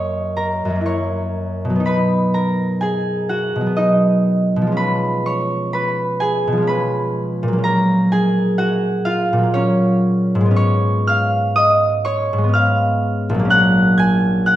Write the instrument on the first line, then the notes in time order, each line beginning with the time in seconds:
harp
Already playing: F#2 F#3 A#3 C#4 E4 A#4 C#5 D#5 F#5 C#6 D#6
0.37 A#4 A#5
0.65 F#2
0.70 F#3
0.75 A#3
0.81 E4
0.86 C#5 C#6
1.65 B2
1.70 F#3
1.76 B3
1.80 D#4
1.86 B4 B5
2.34 A#4 A#5
2.81 G#4 G#5
3.29 F#4 F#5
3.56 B2
3.61 F#3
3.66 B3
3.77 D#4 D#5
4.56 B2
4.62 F3
4.67 G#3
4.72 C#4
4.77 B4 B5
5.26 C#5 C#6
5.73 B4 B5
6.20 G#4 G#5
6.47 B2
6.52 F3
6.57 G#3
6.62 C#4
6.67 B4 B5
7.43 A#2
7.48 F#3
7.53 A#3
7.58 C#4
7.64 A#4 A#5
8.12 G#4 G#5
8.58 F#4 F#5
9.05 F4 F5
9.33 A#2
9.38 F#3
9.43 A#3
9.54 C#4 C#5
10.35 G#2
10.41 G#3
10.46 B3
10.51 C#4
10.56 C#5 C#6
11.07 F5 F6
11.56 D#5 D#6
12.05 C#5 C#6
12.33 G#2
12.38 G#3
12.44 B3
12.49 C#4
12.53 F5 F6
13.29 A#1
13.35 F#3
13.39 A#3
13.45 C#4
13.50 F#5 F#6
13.98 G#5 G#6
14.46 F#5 F#6